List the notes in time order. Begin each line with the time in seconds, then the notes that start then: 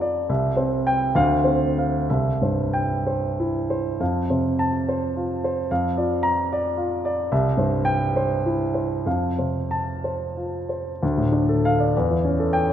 Already playing: F2 F3 F4 F5 A#5
0.00 D5
0.29 C2 E5
0.57 C4 C5
0.87 G5
1.15 D2 F5
1.44 C4 C5
1.78 F5
2.10 C2 E5
2.42 G2 C5
2.73 G5
3.07 C5
3.40 E4
3.70 C5
4.00 F2 F5
4.30 C3 C5
4.59 A5
4.89 C5
5.16 F4
5.44 C5
5.71 F2 F5
5.97 F3 D5
6.23 A#5
6.53 D5
6.77 F4
7.05 D5
7.32 C2 E5
7.57 G2 C5
7.85 G5
8.16 C5
8.46 E4
8.74 C5
9.06 F2 F5
9.38 C3 C5
9.71 A5
10.04 C5
10.37 F4
10.69 C5
11.03 D2
11.18 A2
11.32 D4
11.49 A4
11.65 F5
11.80 D5
11.97 E2
12.10 E3
12.25 C#4
12.39 A4
12.53 G5
12.69 C#5